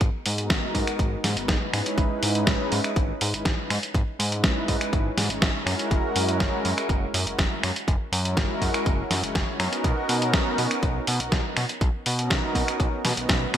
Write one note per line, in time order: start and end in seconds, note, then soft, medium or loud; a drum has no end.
0.01 0.09 G#1 loud
0.01 kick loud
0.01 closed hi-hat soft
0.26 0.51 G#2 medium
0.26 open hi-hat loud
0.38 0.72 G#3 medium
0.38 0.72 B3 medium
0.38 0.72 D#4 medium
0.38 0.72 F#4 medium
0.38 0.72 A#4 medium
0.38 closed hi-hat medium
0.50 0.59 G#1 medium
0.50 kick loud
0.50 snare loud
0.50 closed hi-hat medium
0.74 0.83 G#2 medium
0.74 0.88 G#3 medium
0.74 0.88 B3 medium
0.74 0.88 D#4 medium
0.74 0.88 F#4 medium
0.74 0.89 A#4 loud
0.74 kick medium
0.74 open hi-hat medium
0.87 finger snap medium
0.87 closed hi-hat medium
0.99 1.16 G#1 medium
0.99 kick loud
0.99 closed hi-hat soft
1.24 1.37 G#2 medium
1.24 snare medium
1.24 open hi-hat loud
1.36 1.47 G#1 soft
1.36 1.49 G#3 medium
1.36 1.49 B3 medium
1.36 1.49 D#4 medium
1.36 1.49 F#4 medium
1.36 1.50 B4 loud
1.36 closed hi-hat medium
1.48 1.57 G#1 medium
1.48 kick loud
1.48 snare loud
1.48 closed hi-hat medium
1.72 1.82 G#2 medium
1.72 2.31 G#3 medium
1.72 2.31 C#4 medium
1.72 2.32 D#4 medium
1.72 2.32 E4 medium
1.72 2.32 B4 medium
1.72 finger snap medium
1.72 open hi-hat medium
1.86 closed hi-hat medium
1.98 2.06 G#1 loud
1.98 kick loud
1.98 closed hi-hat soft
2.23 2.48 G#2 medium
2.23 open hi-hat loud
2.34 2.68 G#3 loud
2.34 2.68 C#4 medium
2.34 2.69 D#4 medium
2.34 2.69 E4 medium
2.34 2.69 B4 loud
2.34 closed hi-hat medium
2.47 2.55 G#1 medium
2.47 kick loud
2.47 snare loud
2.47 closed hi-hat soft
2.71 2.80 G#2 medium
2.71 2.80 G#3 loud
2.71 2.80 C#4 medium
2.71 2.80 D#4 medium
2.71 2.80 E4 medium
2.71 2.80 B4 loud
2.71 open hi-hat medium
2.84 finger snap medium
2.84 closed hi-hat medium
2.96 3.13 G#1 medium
2.96 kick loud
2.96 closed hi-hat soft
3.21 3.34 G#2 medium
3.21 open hi-hat loud
3.33 3.43 G#1 soft
3.33 3.46 G#3 medium
3.33 3.46 C#4 medium
3.33 3.46 D#4 medium
3.33 3.47 E4 medium
3.33 3.47 B4 medium
3.33 closed hi-hat medium
3.45 3.54 G#1 medium
3.45 kick loud
3.45 snare loud
3.45 closed hi-hat medium
3.70 3.79 G#2 medium
3.70 finger snap medium
3.70 open hi-hat loud
3.83 closed hi-hat medium
3.95 4.03 G#1 loud
3.95 kick loud
3.95 closed hi-hat soft
4.19 4.45 G#2 medium
4.19 open hi-hat loud
4.32 4.65 G#3 medium
4.32 4.65 C#4 medium
4.32 4.66 D#4 medium
4.32 4.66 E4 medium
4.32 4.66 B4 medium
4.32 closed hi-hat medium
4.44 4.52 G#1 medium
4.44 kick loud
4.44 snare loud
4.44 closed hi-hat soft
4.67 4.77 G#2 medium
4.67 4.82 G#3 medium
4.67 4.82 C#4 medium
4.67 4.82 D#4 medium
4.67 4.82 E4 medium
4.67 4.82 B4 loud
4.67 kick medium
4.67 open hi-hat medium
4.81 finger snap medium
4.81 closed hi-hat medium
4.93 5.10 G#1 medium
4.93 kick loud
4.93 closed hi-hat soft
5.17 5.29 G#2 medium
5.17 snare medium
5.17 open hi-hat loud
5.29 5.40 G#1 soft
5.29 5.43 G#3 medium
5.29 5.43 C#4 medium
5.29 5.43 D#4 medium
5.29 5.43 E4 medium
5.29 5.43 C#5 medium
5.29 closed hi-hat medium
5.42 5.51 G#1 medium
5.42 kick loud
5.42 snare loud
5.42 closed hi-hat soft
5.65 5.75 F#2 medium
5.65 6.25 G#3 medium
5.65 6.25 C#4 medium
5.65 6.25 E4 medium
5.65 6.26 F#4 medium
5.65 6.26 A#4 loud
5.65 finger snap medium
5.65 open hi-hat medium
5.79 closed hi-hat medium
5.91 6.00 F#1 loud
5.91 kick loud
5.91 closed hi-hat soft
6.16 6.42 F#2 medium
6.16 open hi-hat loud
6.27 6.62 G#3 loud
6.27 6.62 C#4 medium
6.27 6.62 E4 medium
6.27 6.62 F#4 medium
6.27 6.62 A#4 loud
6.27 closed hi-hat medium
6.40 6.49 F#1 medium
6.40 kick loud
6.40 snare loud
6.40 closed hi-hat soft
6.64 6.73 F#2 medium
6.64 6.73 G#3 medium
6.64 6.73 C#4 medium
6.64 6.73 E4 medium
6.64 6.73 F#4 medium
6.64 6.73 A#4 loud
6.64 open hi-hat medium
6.78 finger snap medium
6.78 closed hi-hat medium
6.89 7.06 F#1 medium
6.89 kick loud
6.89 closed hi-hat soft
7.14 7.26 F#2 medium
7.14 open hi-hat loud
7.25 7.36 F#1 soft
7.25 7.39 G#3 medium
7.25 7.39 C#4 medium
7.25 7.39 E4 medium
7.25 7.40 F#4 medium
7.25 7.40 A#4 medium
7.25 closed hi-hat medium
7.39 7.47 F#1 medium
7.39 kick loud
7.39 snare loud
7.39 closed hi-hat soft
7.63 7.72 F#2 medium
7.63 finger snap medium
7.63 open hi-hat medium
7.76 closed hi-hat medium
7.88 7.96 F#1 loud
7.88 kick loud
7.88 closed hi-hat medium
8.12 8.39 F#2 medium
8.12 open hi-hat loud
8.24 8.58 G#3 medium
8.24 8.58 C#4 medium
8.24 8.59 E4 medium
8.24 8.59 F#4 medium
8.24 8.59 A#4 medium
8.24 closed hi-hat medium
8.37 8.46 F#1 medium
8.37 kick loud
8.37 snare loud
8.37 closed hi-hat medium
8.61 8.70 F#2 medium
8.61 8.75 G#3 medium
8.61 8.75 C#4 medium
8.61 8.75 E4 medium
8.61 8.75 F#4 medium
8.61 8.75 A#4 loud
8.61 kick medium
8.61 open hi-hat medium
8.74 finger snap medium
8.74 closed hi-hat medium
8.86 9.03 F#1 medium
8.86 kick loud
8.86 closed hi-hat soft
9.10 9.23 F#2 medium
9.10 snare medium
9.10 open hi-hat loud
9.22 9.33 F#1 soft
9.22 9.36 G#3 medium
9.22 9.36 C#4 medium
9.22 9.36 E4 medium
9.22 9.36 F#4 medium
9.22 9.36 C#5 loud
9.22 closed hi-hat medium
9.35 9.44 F#1 medium
9.35 kick loud
9.35 snare loud
9.35 closed hi-hat medium
9.59 9.68 F#2 medium
9.59 10.18 B3 medium
9.59 10.19 C#4 medium
9.59 10.19 D#4 medium
9.59 10.19 F#4 medium
9.59 10.19 A#4 loud
9.59 finger snap medium
9.59 open hi-hat medium
9.73 closed hi-hat medium
9.84 9.93 B1 loud
9.84 kick loud
9.84 closed hi-hat medium
10.09 10.35 B2 medium
10.09 open hi-hat medium
10.21 10.55 B3 loud
10.21 10.55 C#4 medium
10.21 10.56 D#4 medium
10.21 10.56 F#4 medium
10.21 10.56 A#4 loud
10.21 closed hi-hat medium
10.33 10.42 B1 medium
10.33 kick loud
10.33 snare loud
10.33 closed hi-hat medium
10.58 10.67 B2 medium
10.58 10.67 B3 medium
10.58 10.67 C#4 medium
10.58 10.67 D#4 medium
10.58 10.67 F#4 medium
10.58 10.67 A#4 loud
10.58 open hi-hat medium
10.71 finger snap medium
10.71 closed hi-hat medium
10.83 11.00 B1 medium
10.83 kick loud
10.83 closed hi-hat soft
11.07 11.20 B2 medium
11.07 open hi-hat loud
11.19 11.30 B1 soft
11.19 11.33 B3 medium
11.19 11.33 C#4 medium
11.19 11.33 D#4 medium
11.19 11.33 F#4 medium
11.19 11.33 A#4 medium
11.19 closed hi-hat medium
11.32 11.41 B1 medium
11.32 kick loud
11.32 snare loud
11.32 closed hi-hat medium
11.57 11.65 B2 medium
11.57 finger snap medium
11.57 open hi-hat medium
11.69 closed hi-hat medium
11.81 11.90 B1 loud
11.81 kick loud
11.81 closed hi-hat medium
12.06 12.32 B2 medium
12.06 open hi-hat loud
12.18 12.52 B3 medium
12.18 12.52 C#4 medium
12.18 12.52 D#4 medium
12.18 12.52 F#4 medium
12.18 12.53 A#4 medium
12.18 closed hi-hat medium
12.30 12.39 B1 medium
12.30 kick loud
12.30 snare loud
12.30 closed hi-hat medium
12.55 12.64 B2 medium
12.55 12.69 B3 loud
12.55 12.69 C#4 medium
12.55 12.69 D#4 medium
12.55 12.69 F#4 medium
12.55 12.69 A#4 loud
12.55 kick medium
12.55 open hi-hat medium
12.68 finger snap medium
12.68 closed hi-hat medium
12.80 12.88 B1 medium
12.80 kick loud
12.80 closed hi-hat soft
13.05 13.13 B2 medium
13.05 snare medium
13.05 open hi-hat loud
13.17 13.27 B1 soft
13.17 13.30 B3 medium
13.17 13.30 C#4 medium
13.17 13.30 D#4 medium
13.17 13.30 F#4 medium
13.17 13.30 B4 loud
13.17 closed hi-hat medium
13.29 13.46 B1 medium
13.29 kick loud
13.29 snare loud
13.29 closed hi-hat medium
13.53 13.57 B2 loud
13.53 13.57 G#3 medium
13.53 13.57 B3 medium
13.53 finger snap medium
13.53 open hi-hat medium